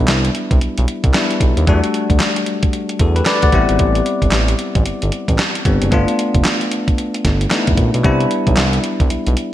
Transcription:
Already playing: G3 B3 D4 E4
0.08 C2, snare, clap, closed hi-hat
0.25 closed hi-hat
0.35 closed hi-hat
0.51 C2, kick, closed hi-hat
0.61 B1, closed hi-hat
0.78 B1, closed hi-hat
0.88 closed hi-hat
1.04 C2, kick, closed hi-hat
1.14 G3 B3 D4 E4, snare, clap, closed hi-hat
1.31 closed hi-hat
1.41 B1, kick, closed hi-hat
1.57 D#2, closed hi-hat
1.67 E2 F#3 A3 D4 F#4, kick, closed hi-hat
1.73 G3
1.84 closed hi-hat
1.94 closed hi-hat
2.10 D2, kick, closed hi-hat
2.20 snare, clap, closed hi-hat
2.36 closed hi-hat
2.46 closed hi-hat
2.63 kick, closed hi-hat
2.73 closed hi-hat
2.89 closed hi-hat
2.99 E2 F#4 A4, kick, closed hi-hat
3.16 G4 B4, closed hi-hat
3.26 B4 D5, snare, clap, closed hi-hat
3.42 D2 D5 F#5, kick, closed hi-hat
3.52 A1 G3 B3 C4 E4, kick, closed hi-hat
3.69 G#1, closed hi-hat
3.79 A1, kick, closed hi-hat
3.95 closed hi-hat
4.06 closed hi-hat
4.22 G1, kick, closed hi-hat
4.31 A1, snare, clap, closed hi-hat
4.48 closed hi-hat
4.59 closed hi-hat
4.75 A1, kick, closed hi-hat
4.86 G1, closed hi-hat
5.02 G1, closed hi-hat
5.12 closed hi-hat
5.28 A1, kick, closed hi-hat
5.38 snare, clap, closed hi-hat
5.55 closed hi-hat
5.65 G1 G3 B3 C4 D4, kick, closed hi-hat
5.82 F#1, closed hi-hat
5.91 G1 A3 B3 D4 F4, kick, closed hi-hat
6.08 closed hi-hat
6.19 closed hi-hat
6.35 F1, kick, closed hi-hat
6.45 snare, clap, closed hi-hat
6.61 closed hi-hat
6.71 closed hi-hat
6.88 kick, closed hi-hat
6.98 closed hi-hat
7.14 closed hi-hat
7.25 G1, kick, snare, closed hi-hat
7.41 closed hi-hat
7.50 A3 B3 D4 D#4, snare, clap, closed hi-hat
7.58 E4
7.67 F1, kick, closed hi-hat
7.77 A#1, kick, closed hi-hat
7.94 B1, closed hi-hat
8.03 C2 G3 B3 D4 E4, kick, closed hi-hat
8.20 closed hi-hat
8.31 closed hi-hat
8.47 B1, kick, closed hi-hat
8.57 C2, snare, clap, closed hi-hat
8.73 closed hi-hat
8.84 closed hi-hat
9.00 C2, kick, closed hi-hat
9.10 B1, closed hi-hat
9.27 B1, closed hi-hat
9.37 closed hi-hat

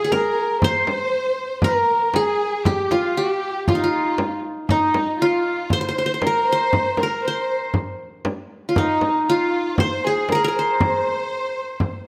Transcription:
Already playing: F4 G#4
0.04 G#4
0.10 A#4, frame drum
0.62 C5, frame drum
0.87 frame drum
1.62 A#4, frame drum
2.14 G#4, frame drum
2.64 G4, frame drum
2.91 F4, frame drum
3.16 G4
3.67 F4, frame drum
3.75 D#4
3.82 F4
4.18 frame drum
4.69 D#4, frame drum
4.94 frame drum
5.21 F4
5.70 C5, frame drum
5.81 C5
5.89 C5
5.98 C5
6.06 C5
6.14 C5
6.21 A#4, frame drum
6.27 A#4
6.48 C5
6.52 C5
6.73 frame drum
6.97 A#4, frame drum
7.03 A#4
7.23 C5
7.28 C5
7.74 frame drum
8.25 frame drum
8.69 F4
8.76 D#4, frame drum
9.01 frame drum
9.28 F4
9.78 C5, frame drum
10.04 G#4
10.29 A#4, frame drum
10.35 G#4
10.43 A#4
10.48 A#4
10.55 C5
10.59 C5
10.81 frame drum
11.80 frame drum

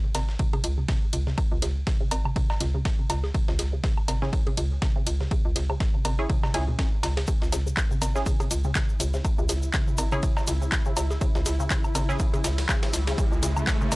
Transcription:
0.04 C#3
0.15 G#1 C#3, snare, closed hi-hat, ride, cowbell
0.29 snare
0.39 C#3, kick, ride
0.53 C#3, ride, low bongo, high woodblock
0.64 C#2, closed hi-hat, ride
0.78 C#3
0.88 C#3, kick, snare, ride
1.13 C#2 C#3, closed hi-hat, ride
1.27 C#3, snare
1.38 kick, ride, high woodblock
1.52 C#2 C#3
1.62 C#2 C#3, snare, closed hi-hat, ride, low bongo
1.87 C#3, kick, snare, ride
2.01 C#3
2.11 G#1, closed hi-hat, ride, cowbell
2.25 C#3, high woodblock
2.36 C#3, kick, ride
2.50 snare, cowbell
2.60 C#2 C#3, snare, closed hi-hat, ride
2.74 C#3
2.85 kick, snare, ride
2.99 C#3
3.10 C#2 C#3, snare, closed hi-hat, ride, cowbell, high woodblock
3.24 snare, low bongo
3.34 C#3, kick, ride
3.48 C#2 C#3, snare
3.59 C#2, snare, closed hi-hat, ride, low bongo
3.73 C#3
3.84 C#3, kick, snare, ride
3.98 high woodblock
4.08 G#1 C#3, snare, closed hi-hat, ride, cowbell
4.22 C#3 C#4 E4 G#4, snare
4.33 kick, ride
4.47 C#3, ride, low bongo
4.57 C#2 C#3, closed hi-hat, ride
4.82 C#3, kick, snare, ride, high woodblock
4.96 C#3
5.07 C#2, closed hi-hat, ride
5.20 C#3, snare
5.31 C#3, kick, ride
5.45 C#2
5.56 C#2 C#3, snare, closed hi-hat, ride, low bongo
5.70 C#3, high woodblock
5.80 kick, snare, ride
5.94 C#3
6.05 G#1 C#3, closed hi-hat, ride, cowbell
6.19 C#4 E4 G#4
6.29 C#3, kick, ride
6.43 C#3, snare, cowbell
6.54 C#2 C#3 C#4 E4 G#4, snare, closed hi-hat, ride, high woodblock
6.68 B2
6.79 C#4, kick, snare, ride
7.03 C#2 C#3, snare, closed hi-hat, ride, cowbell
7.17 C#3, snare, ride, low bongo
7.27 C#3 E4, kick, ride, shaker
7.42 C#2, snare, shaker
7.52 C#2 C#3, snare, closed hi-hat, ride, low bongo, high woodblock, shaker
7.66 C#3, shaker
7.77 kick, snare, clap, ride, shaker
7.91 C#3, shaker
8.02 G#1 C#3, snare, closed hi-hat, ride, cowbell, shaker
8.15 C#4 E4 G#4, snare, shaker
8.26 C#3, kick, ride, shaker
8.40 C#3, ride, low bongo, high woodblock, shaker
8.51 C#2, closed hi-hat, ride, shaker
8.64 C#3, shaker
8.75 C#3, kick, snare, clap, ride, shaker
8.89 shaker
9.00 C#2 C#3, closed hi-hat, ride, shaker
9.14 C#3, snare, shaker
9.25 kick, ride, high woodblock, shaker
9.38 C#2 C#3, shaker
9.49 C#2 C#3, snare, closed hi-hat, ride, low bongo, shaker
9.63 shaker
9.73 C#3, kick, snare, clap, ride, shaker
9.88 C#3, shaker
9.98 G#1, closed hi-hat, ride, cowbell, shaker
10.12 C#3 C#4 E4 G#4, high woodblock, shaker
10.23 C#3, kick, ride, shaker
10.37 snare, cowbell, shaker
10.47 C#2 C#3, snare, closed hi-hat, ride, shaker
10.61 C#3, shaker
10.72 kick, snare, clap, ride, shaker
10.85 C#3, shaker
10.97 C#2 C#3, snare, closed hi-hat, ride, cowbell, high woodblock, shaker
11.11 snare, low bongo, shaker
11.21 C#3, kick, ride, riser, shaker
11.35 C#2 C#3, snare, shaker
11.46 C#2, snare, closed hi-hat, ride, low bongo, shaker
11.60 C#3, shaker
11.70 C#3, kick, snare, clap, ride, shaker
11.84 high woodblock, shaker
11.95 G#1 C#3, snare, closed hi-hat, ride, cowbell, shaker
12.09 C#3 C#4 E4 G#4, snare, shaker
12.19 kick, ride, shaker
12.34 C#3, ride, low bongo, shaker
12.44 C#2 C#3, snare, closed hi-hat, ride, shaker
12.58 snare, ride, shaker
12.69 C#3, kick, snare, clap, ride, high woodblock, shaker
12.83 C#3, snare, ride, shaker
12.93 C#2, snare, closed hi-hat, ride, shaker
13.07 C#3, snare, ride, shaker
13.18 C#3, kick, ride, shaker
13.32 C#2, shaker
13.43 C#2 C#3, snare, closed hi-hat, ride, low bongo, shaker
13.57 C#3, high woodblock, shaker
13.67 kick, snare, clap, ride, shaker
13.81 C#3, shaker
13.92 G#1 C#3, snare, closed hi-hat, ride, cowbell, shaker

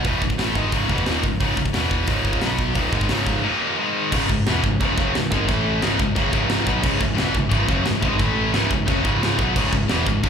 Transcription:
0.04 E1 E2 B2 E3, kick, open hi-hat
0.22 C#1 C#2 G#2, kick
0.30 kick
0.39 A1 A2 E3 A3, snare, open hi-hat
0.55 G#1 G#2 D#3 G#3, kick
0.71 C#1 C#2 G#2 C#3, kick, open hi-hat
0.89 E1 E2 B2 E3, kick
0.98 kick
1.06 D#1 D#2 A#2 D#3, snare, open hi-hat
1.23 C#1 C#2 G#2, kick
1.40 C#1 C#2 G#2 C#3, kick, open hi-hat
1.57 C#1 C#2 G#2, kick
1.66 kick
1.73 E1 E2 B2 E3, snare, open hi-hat
1.91 kick
2.07 C#1 C#2 G#2 C#3, kick, open hi-hat
2.25 kick
2.33 kick
2.40 B1 B2 F#3 B3, snare, open hi-hat
2.59 kick
2.74 D#1 D#2 A#2 D#3, kick, open hi-hat
2.92 G#1 G#2 D#3 G#3, kick
3.01 kick
3.09 C#1 C#2 G#2 C#3, snare, open hi-hat
3.27 kick
3.43 D#2 A#2 D#3
3.78 G#2 D#3 G#3
4.12 C#1 C#2 G#2 C#3 E3 C#4 G#4 E5, kick, crash, china
4.29 C#1 C#2 G#2, kick
4.46 E1 E2 B2 E3, snare, china
4.64 C#1 C#2 G#2, kick
4.81 C#1 C#2 G#2 C#3, kick, china
4.98 F#1 F#2 C#3 F#3, kick
5.15 C#1 C#2 G#2, snare, china
5.32 G#1 G#2 D#3 G#3, kick
5.48 A1 A2 E3 A3 A4, kick, china
5.81 C#1 C#2 G#2 C#3 C#4 G#4, snare, china
5.99 C#1 C#2 G#2, kick
6.15 F#1 F#2 C#3 F#3, kick, china
6.31 C#1 C#2 G#2 C#3, kick
6.49 snare, china
6.65 B1 B2 F#3 B3, kick
6.82 C#1 C#2 G#2 C#3, kick, china, crash
6.99 C#1 C#2 G#2, kick
7.14 E1 E2 B2 E3, snare, china
7.18 E2
7.32 C#1 C#2 G#2, kick
7.49 C#1 C#2 G#2 C#3, kick, china
7.67 F#1 F#2 C#3 F#3, kick
7.84 C#1 C#2 G#2, snare, china
8.01 G#1 G#2 D#3 G#3, kick
8.17 A1 A2 E3 A3 A4, kick, china
8.53 C#1 C#2 G#2 C#3 C#4 G#4, snare, china
8.69 C#1 C#2 G#2, kick
8.86 F#1 F#2 C#3 F#3, kick, china
9.03 C#1 C#2 G#2 C#3, kick
9.23 snare, china
9.38 B1 B2 F#3 B3, kick
9.56 C#1 C#2 G#2 C#3, kick, china, crash
9.72 C#1 C#2 G#2, kick
9.88 E1 E2 B2 E3, snare, china
10.06 C#1 C#2 G#2, kick
10.23 C#1 C#2 G#2 C#3, kick, china

